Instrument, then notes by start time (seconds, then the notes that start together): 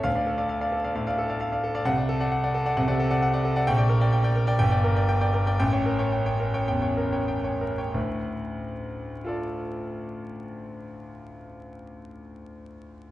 grand piano
0.03 D2 F5
0.15 D5 F5
0.27 A4
0.38 D5 F5
0.49 F5
0.61 D5 F5
0.72 A4
0.84 D5 F5
0.95 A2 F5
1.07 D5 F5
1.18 A4
1.29 D5 F5
1.41 F5
1.52 D5 F5
1.64 A4
1.75 D5 F5
1.85 C2 F#5
1.98 D5 F#5
2.09 A4
2.20 D5 F#5
2.32 F#5
2.44 D5 F#5
2.54 A4
2.66 D5 F#5
2.77 C2 F#5
2.88 C3 D5 F#5
2.99 A4
3.10 D5 F#5
3.22 F#5
3.33 D5 F#5
3.45 A4
3.56 D5 F#5
3.67 A#1 G5
3.78 D5 G5
3.89 A#4
4.01 D5 G5
4.13 G5
4.24 D5 G5
4.35 A#4
4.47 D5 G5
4.59 G1 G5
4.71 D5 G5
4.84 A#4
4.96 D5 G5
5.09 G5
5.21 D5 G5
5.34 A#4
5.47 D5 G5
5.60 A1 G5
5.73 C#5 G5
5.86 A#4
5.99 C#5 G5
6.12 G5
6.26 C#5 G5
6.40 A#4
6.54 C#5 G5
6.68 E2 G5
6.82 C#5 G5
6.97 A#4
7.12 C#5 G5
7.28 G5
7.44 C#5 G5
7.61 A#4
7.78 C#5 G5
7.94 D2 A2
9.25 F4 A4 D5